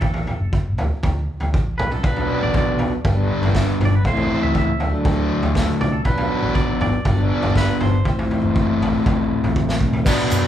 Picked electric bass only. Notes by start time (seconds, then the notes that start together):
0.02 A1
0.40 F#1
0.78 D2
1.03 D2
1.43 D2
1.54 A1
1.80 B1
2.04 B1
2.43 A1
2.80 B1
3.05 G1
3.42 G1
3.80 G1
4.05 A1
4.43 C#2
4.80 D2
5.05 D2
5.44 D2
5.81 C2
6.05 B1
6.42 A1
6.81 G#1
7.05 G1
7.43 G1
7.81 G1
8.06 A1
8.43 F#1
8.82 A1
9.06 A1
9.44 A1
9.56 A1
9.81 B1
10.06 B1
10.32 F#2